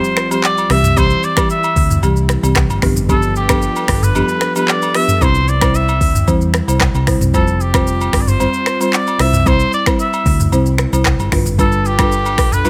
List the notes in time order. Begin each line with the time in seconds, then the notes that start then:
Already playing: F3 G3 C4 F4 G4 C5, impact
0.04 shaker
0.17 finger snap, cross-stick, shaker
0.31 F3 G3 C4 G4 C5, high agogo, shaker
0.44 D5, clap, low woodblock, shaker
0.58 high agogo, shaker
0.70 C2 E3 G3 C4 E4 G4 E5, finger snap, cross-stick, open hi-hat, shaker
0.84 mid tom, shaker
0.97 E3 G3 C4 G4 C5, kick, high agogo, shaker
1.10 shaker
1.23 D5, shaker
1.37 E3 G3 C4 G4, finger snap, kick, cross-stick, high agogo, shaker
1.50 E5, shaker
1.64 high agogo, shaker
1.76 D2, kick, open hi-hat, shaker
1.90 mid tom, shaker
2.03 C2 E3 G3 C4 G4, high agogo, shaker
2.16 shaker
2.29 finger snap, cross-stick, shaker
2.43 C2 E3 G3 C4 G4, high agogo, shaker
2.56 finger snap, kick, cross-stick, clap, low woodblock, shaker
2.70 G1, high agogo, shaker
2.82 G1 F3 B3 D4 F4 G4 A4 B4, finger snap, kick, cross-stick, open hi-hat, shaker
2.96 mid tom, shaker
3.09 F3 B3 D4 G4 A4, kick, high agogo, shaker
3.22 shaker
3.36 G4, shaker
3.49 F3 B3 D4 G4, finger snap, kick, cross-stick, high agogo, shaker
3.62 shaker
3.76 high agogo, shaker
3.88 G1, finger snap, kick, cross-stick, open hi-hat, shaker
4.03 B4, mid tom, shaker
4.15 F3 B3 D4 G4, high agogo, shaker
4.29 shaker
4.41 finger snap, cross-stick, shaker
4.56 F3 B3 D4 G4 B4, high agogo, shaker
4.68 D5, clap, low woodblock, shaker
4.82 high agogo, shaker
4.95 F3 B3 D4 G4 E5, finger snap, cross-stick, open hi-hat, shaker
5.08 mid tom, shaker
5.21 C2 G3 C4 E4 C5, kick, high agogo, shaker
5.35 shaker
5.48 D5, shaker
5.61 G3 C4 E4 C5, finger snap, kick, cross-stick, high agogo, shaker
5.75 E5, shaker
5.89 high agogo, shaker
6.01 D2, kick, open hi-hat, shaker
6.15 mid tom, shaker
6.27 E2 G3 C4 E4 C5, kick, high agogo, shaker
6.41 shaker
6.54 finger snap, cross-stick, shaker
6.68 C2 G3 C4 E4 C5, high agogo, shaker
6.80 finger snap, kick, cross-stick, clap, low woodblock, shaker
6.95 C2, high agogo, shaker
7.07 G3 C4 E4 C5, finger snap, kick, cross-stick, open hi-hat, shaker
7.21 C2, mid tom, shaker
7.34 F1 G3 C4 F4 A4 C5, kick, high agogo, shaker
7.47 shaker
7.61 G4, shaker
7.74 G3 C4 F4 C5, finger snap, kick, cross-stick, high agogo, shaker
7.87 shaker
8.01 high agogo, shaker
8.13 G1, finger snap, kick, cross-stick, open hi-hat, shaker
8.21 D5
8.28 C5, mid tom, shaker
8.40 G3 C4 F4 C5, high agogo, shaker
8.54 shaker
8.66 finger snap, cross-stick, shaker
8.80 G3 C4 F4 C5, high agogo, shaker
8.93 D5, clap, low woodblock, shaker
9.07 high agogo, shaker
9.19 C2 G3 C4 E4 C5 E5, finger snap, cross-stick, open hi-hat, shaker
9.34 mid tom, shaker
9.46 G3 C4 E4 C5, kick, high agogo, shaker
9.60 shaker
9.73 D5, shaker
9.86 G3 C4 E4 C5, finger snap, kick, cross-stick, high agogo, shaker
9.99 E5, shaker
10.13 high agogo, shaker
10.26 D2, kick, open hi-hat, shaker
10.40 mid tom, shaker
10.52 C2 G3 C4 E4 C5, high agogo, shaker
10.66 shaker
10.78 finger snap, cross-stick, shaker
10.93 C2 G3 C4 E4 C5, high agogo, shaker
11.05 finger snap, kick, cross-stick, clap, low woodblock, shaker
11.19 G1, high agogo, shaker
11.32 G1 G3 D4 F4 A4 B4, finger snap, kick, cross-stick, open hi-hat, shaker
11.46 mid tom, shaker
11.58 G3 D4 F4 A4 B4, kick, high agogo, shaker
11.72 shaker
11.85 G4, shaker
11.99 G3 D4 F4 B4, finger snap, kick, cross-stick, high agogo, shaker
12.12 shaker
12.26 high agogo, shaker
12.38 B1, finger snap, kick, cross-stick, open hi-hat, shaker
12.52 B4, mid tom, shaker
12.65 G3 D4 F4 B4, high agogo, shaker